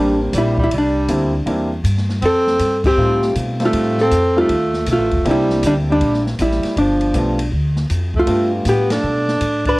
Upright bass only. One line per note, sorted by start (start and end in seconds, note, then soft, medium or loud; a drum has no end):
0.00 0.32 A1 medium
0.33 0.70 A#1 medium
0.71 1.08 C2 medium
1.09 1.45 D2 medium
1.46 1.83 E2 medium
1.84 2.21 G2 medium
2.22 2.59 F2 medium
2.59 2.96 G2 medium
2.97 3.34 A2 medium
3.36 3.72 B2 medium
3.73 4.10 A2 medium
4.11 4.48 F2 medium
4.49 4.86 D#2 medium
4.87 4.98 B1 medium
4.98 5.11 A1 medium
5.13 5.24 F1 medium
5.25 5.62 C2 medium
5.63 5.99 D2 medium
6.01 6.37 A#1 medium
6.39 6.61 A1 medium
6.64 muted upright bass stroke soft
6.77 7.13 G1 medium
7.14 7.51 B1 medium
7.52 7.89 D2 medium
7.90 8.27 F2 medium
8.27 8.64 G2 medium
8.65 9.02 A2 medium
9.03 9.40 B2 medium
9.41 9.78 A2 medium